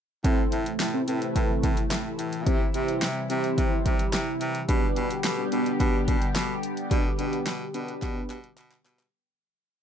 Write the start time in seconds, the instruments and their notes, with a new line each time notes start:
0.24 baritone saxophone A2, analog synth pad C3 E3 A3 E4, analog polysynth C4 E4 A4 C5, kick, closed hi-hat
0.52 baritone saxophone A2, closed hi-hat
0.66 closed hi-hat
0.80 baritone saxophone A2, snare, clap, closed hi-hat
0.94 analog polysynth C4 E4 A4 C5
1.08 baritone saxophone A2, analog polysynth C4 E4 A4 B4, closed hi-hat
1.22 closed hi-hat
1.36 baritone saxophone A2, kick, closed hi-hat
1.63 baritone saxophone A2, kick, closed hi-hat
1.77 closed hi-hat
1.91 baritone saxophone A2, snare, clap, closed hi-hat
2.19 baritone saxophone A2, closed hi-hat
2.33 closed hi-hat
2.46 baritone saxophone C3, analog synth pad C3 G3, analog polysynth C4 E4 G4 C5, kick, closed hi-hat
2.74 baritone saxophone C3, analog polysynth C4 E4 G4 C5, closed hi-hat
2.88 closed hi-hat
3.02 baritone saxophone C3, snare, clap, closed hi-hat
3.30 baritone saxophone C3, analog polysynth C4 E4 G4 C5, closed hi-hat
3.44 closed hi-hat
3.58 baritone saxophone C3, kick, closed hi-hat
3.86 baritone saxophone C3, kick, closed hi-hat
3.99 closed hi-hat
4.13 baritone saxophone C3, snare, clap, closed hi-hat
4.41 baritone saxophone C3, closed hi-hat
4.55 closed hi-hat
4.68 baritone saxophone B2, analog synth pad D3 G3 B3 G4, analog polysynth B3 D4 G4 B4, kick, closed hi-hat
4.96 baritone saxophone B2, closed hi-hat
5.11 closed hi-hat
5.24 baritone saxophone B2, snare, clap, closed hi-hat
5.38 analog polysynth B3 D4 G4 B4
5.52 baritone saxophone B2, analog polysynth B3 D4 G4 B4, closed hi-hat
5.66 closed hi-hat
5.80 baritone saxophone B2, kick, closed hi-hat
6.08 baritone saxophone B2, kick, closed hi-hat
6.22 closed hi-hat
6.35 baritone saxophone B2, snare, clap, closed hi-hat
6.63 closed hi-hat
6.77 closed hi-hat
6.91 baritone saxophone B2, analog polysynth B3 D4 G4 D5, kick, closed hi-hat
7.18 baritone saxophone B2, analog polysynth B3 D4 G4 B4, closed hi-hat
7.33 closed hi-hat
7.46 baritone saxophone B2, snare, clap, closed hi-hat
7.74 baritone saxophone B2, analog polysynth B3 D4 G4 B4, closed hi-hat
7.88 closed hi-hat
8.02 baritone saxophone B2, kick, clap, closed hi-hat
8.30 baritone saxophone B2, clap, closed hi-hat
8.44 closed hi-hat
8.57 baritone saxophone B2, clap, closed hi-hat
8.71 clap
8.85 baritone saxophone B2, clap, closed hi-hat
8.99 clap, closed hi-hat